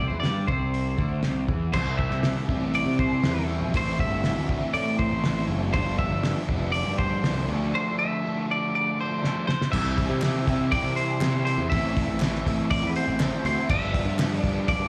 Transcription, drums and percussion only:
0.23 snare, open hi-hat
0.48 kick
0.74 open hi-hat
0.99 kick
1.23 snare, open hi-hat
1.49 kick
1.73 kick, crash
1.99 kick
2.11 snare
2.23 snare, open hi-hat
2.49 kick
2.74 open hi-hat
2.99 kick
3.24 snare, open hi-hat
3.74 kick, open hi-hat
3.99 kick
4.24 snare, open hi-hat
4.49 kick
4.75 open hi-hat
4.99 kick
5.24 snare, open hi-hat
5.74 kick, open hi-hat
5.99 kick
6.24 snare, open hi-hat
6.49 kick
6.74 open hi-hat
6.99 kick
7.24 snare, open hi-hat
9.24 snare
9.49 snare
9.62 snare
9.73 kick, crash
9.98 kick, open hi-hat
10.21 snare, clap, open hi-hat
10.47 kick, open hi-hat
10.72 kick, open hi-hat
10.97 open hi-hat
11.21 snare, clap, open hi-hat
11.47 open hi-hat
11.72 kick, open hi-hat
11.97 kick, open hi-hat
12.20 snare, clap, open hi-hat
12.34 snare
12.46 kick, open hi-hat
12.71 kick, open hi-hat
12.96 open hi-hat
13.20 snare, clap, open hi-hat
13.45 open hi-hat
13.69 kick, crash
13.94 kick, open hi-hat
14.19 snare, clap, open hi-hat
14.44 kick, open hi-hat
14.68 kick, open hi-hat

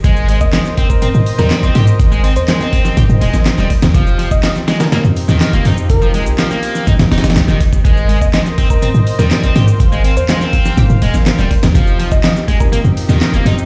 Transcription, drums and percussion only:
0.04 kick, closed hi-hat, shaker
0.17 shaker
0.28 closed hi-hat, open hi-hat
0.41 kick, shaker
0.53 snare, clap, closed hi-hat, shaker
0.65 snare, shaker
0.77 kick, closed hi-hat, open hi-hat
0.90 kick, shaker
1.02 closed hi-hat, shaker
1.14 shaker
1.26 open hi-hat
1.38 snare, shaker
1.51 snare, clap, closed hi-hat, shaker
1.63 closed hi-hat, shaker
1.75 snare, closed hi-hat, open hi-hat
1.87 shaker
2.00 kick, closed hi-hat, shaker
2.12 shaker
2.24 closed hi-hat, open hi-hat
2.36 closed hi-hat, shaker
2.48 snare, clap, closed hi-hat, shaker
2.60 snare, shaker
2.73 kick, closed hi-hat, open hi-hat
2.85 snare, shaker
2.97 kick, closed hi-hat, shaker
3.09 shaker
3.21 closed hi-hat, open hi-hat
3.34 snare, shaker
3.46 snare, clap, closed hi-hat, shaker
3.58 snare, shaker
3.70 kick, closed hi-hat, open hi-hat
3.82 snare, closed hi-hat, shaker
3.95 kick, closed hi-hat, shaker
4.07 shaker
4.19 closed hi-hat, open hi-hat
4.31 kick, shaker
4.43 snare, clap, closed hi-hat, shaker
4.56 snare, shaker
4.68 snare, closed hi-hat, open hi-hat
4.80 snare, closed hi-hat, shaker
4.92 snare, closed hi-hat, shaker
5.04 shaker
5.16 open hi-hat
5.29 snare, shaker
5.41 snare, clap, closed hi-hat, shaker
5.53 closed hi-hat, shaker
5.65 snare, closed hi-hat, open hi-hat
5.77 shaker
5.89 kick, closed hi-hat, shaker
6.02 shaker
6.14 closed hi-hat, open hi-hat
6.26 closed hi-hat, shaker
6.38 snare, clap, closed hi-hat, shaker
6.50 snare, shaker
6.63 closed hi-hat, open hi-hat
6.75 snare, shaker
6.87 kick, closed hi-hat, shaker
6.99 snare, closed hi-hat, shaker
7.12 snare, closed hi-hat, open hi-hat
7.18 snare, closed hi-hat
7.24 snare, closed hi-hat, shaker
7.30 snare, closed hi-hat
7.36 snare, clap, closed hi-hat, shaker
7.48 snare, shaker
7.60 kick, closed hi-hat, open hi-hat
7.73 kick, shaker
7.85 kick, closed hi-hat, shaker
7.97 shaker
8.09 closed hi-hat, open hi-hat
8.21 kick, shaker
8.34 snare, clap, closed hi-hat, shaker
8.46 snare, shaker
8.58 kick, closed hi-hat, open hi-hat
8.70 kick, shaker
8.82 closed hi-hat, shaker
8.95 shaker
9.07 open hi-hat
9.19 snare, shaker
9.31 snare, clap, closed hi-hat, shaker
9.43 closed hi-hat, shaker
9.55 snare, closed hi-hat, open hi-hat
9.68 shaker
9.80 kick, closed hi-hat, shaker
9.92 shaker
10.04 closed hi-hat, open hi-hat
10.17 closed hi-hat, shaker
10.29 snare, clap, closed hi-hat, shaker
10.41 snare, shaker
10.53 kick, closed hi-hat, open hi-hat
10.65 snare, shaker
10.78 kick, closed hi-hat, shaker
10.90 shaker
11.02 closed hi-hat, open hi-hat
11.14 snare, shaker
11.26 snare, clap, closed hi-hat, shaker
11.39 snare, shaker
11.51 kick, closed hi-hat, open hi-hat
11.63 snare, closed hi-hat, shaker
11.75 kick, closed hi-hat, shaker
11.87 shaker
11.99 closed hi-hat, open hi-hat
12.11 kick, shaker
12.24 snare, clap, closed hi-hat, shaker
12.36 snare, shaker
12.48 kick, closed hi-hat, open hi-hat
12.60 kick, shaker
12.73 closed hi-hat, shaker
12.85 shaker
12.97 open hi-hat
13.09 snare, shaker
13.21 snare, clap, closed hi-hat, shaker
13.34 closed hi-hat, shaker
13.46 snare, closed hi-hat, open hi-hat
13.58 shaker

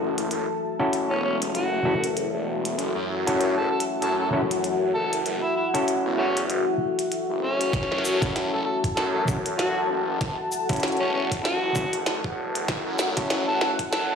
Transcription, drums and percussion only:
0.18 closed hi-hat
0.31 closed hi-hat
0.93 closed hi-hat
1.42 closed hi-hat
1.55 closed hi-hat
2.04 closed hi-hat
2.17 closed hi-hat
2.65 closed hi-hat
2.79 closed hi-hat
3.27 closed hi-hat
3.41 closed hi-hat
3.80 closed hi-hat
4.02 closed hi-hat
4.51 closed hi-hat
4.64 closed hi-hat
5.13 closed hi-hat
5.26 closed hi-hat
5.75 closed hi-hat
5.88 closed hi-hat
6.37 closed hi-hat
6.50 closed hi-hat
6.99 closed hi-hat
7.12 closed hi-hat
7.61 closed hi-hat
7.73 kick, snare, closed hi-hat
7.83 snare
7.92 snare
7.98 snare
8.05 shaker
8.22 kick, closed hi-hat
8.36 snare, closed hi-hat
8.84 kick, closed hi-hat
8.97 snare, closed hi-hat
9.28 kick, shaker
9.46 closed hi-hat
9.59 snare, closed hi-hat
10.21 kick, snare, closed hi-hat
10.52 shaker
10.69 kick, closed hi-hat
10.73 closed hi-hat
10.76 closed hi-hat
10.80 snare, closed hi-hat
10.83 closed hi-hat
10.88 closed hi-hat
10.92 closed hi-hat
10.97 closed hi-hat
11.32 kick, closed hi-hat
11.45 snare, closed hi-hat
11.76 kick, shaker
11.93 closed hi-hat
12.06 snare, closed hi-hat
12.24 kick
12.55 closed hi-hat
12.68 kick, snare, closed hi-hat
12.99 snare, shaker
13.17 kick, closed hi-hat
13.30 snare, closed hi-hat
13.61 snare
13.79 kick, closed hi-hat
13.93 snare, closed hi-hat

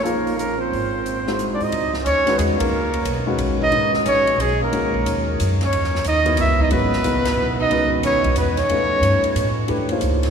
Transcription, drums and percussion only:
0.05 closed hi-hat
0.27 open hi-hat
0.39 closed hi-hat
0.73 open hi-hat
1.06 closed hi-hat
1.27 snare
1.39 closed hi-hat
1.60 open hi-hat
1.72 ride
1.94 snare
2.06 hi-hat pedal, ride
2.27 snare, ride
2.39 hi-hat pedal, ride
2.60 kick, ride
2.94 ride
3.05 hi-hat pedal, ride
3.38 ride
3.72 ride
3.94 snare
4.06 hi-hat pedal, ride
4.27 ride
4.40 hi-hat pedal, ride
4.73 ride
4.94 kick
5.06 hi-hat pedal, ride
5.40 hi-hat pedal, ride
5.61 snare, ride
5.73 ride
5.84 snare
5.95 snare
6.04 hi-hat pedal, ride
6.26 ride
6.37 hi-hat pedal, ride
6.59 kick
6.71 ride
6.93 snare
7.04 hi-hat pedal, ride
7.25 snare, ride
7.71 ride
8.03 hi-hat pedal, ride
8.24 kick, ride
8.36 hi-hat pedal, ride
8.57 snare, ride
8.69 ride
9.03 hi-hat pedal, ride
9.24 ride
9.36 hi-hat pedal, ride
9.68 ride
9.89 ride
10.01 hi-hat pedal, ride
10.23 snare, ride

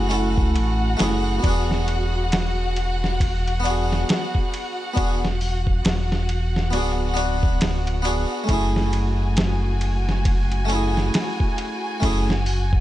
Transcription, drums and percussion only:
0.11 ride
0.38 kick
0.56 ride
0.99 snare, ride
1.44 kick, ride
1.71 snare
1.88 ride
2.32 snare, ride
2.76 ride
3.04 snare
3.20 kick, ride
3.47 ride
3.65 ride
3.92 snare
4.09 snare, ride
4.35 kick
4.54 ride
4.97 kick, ride
5.25 snare
5.41 open hi-hat
5.67 kick
5.85 snare, ride
6.12 snare
6.29 ride
6.56 snare
6.73 ride
7.17 ride
7.43 kick
7.61 snare, ride
7.87 ride
8.05 ride
8.49 kick, ride
8.76 snare
8.93 ride
9.37 snare, ride
9.81 ride
10.09 snare
10.25 kick, ride
10.52 ride
10.70 ride
10.97 snare
11.14 snare, ride
11.40 kick
11.58 ride
12.02 kick, ride
12.30 snare
12.46 open hi-hat
12.73 kick

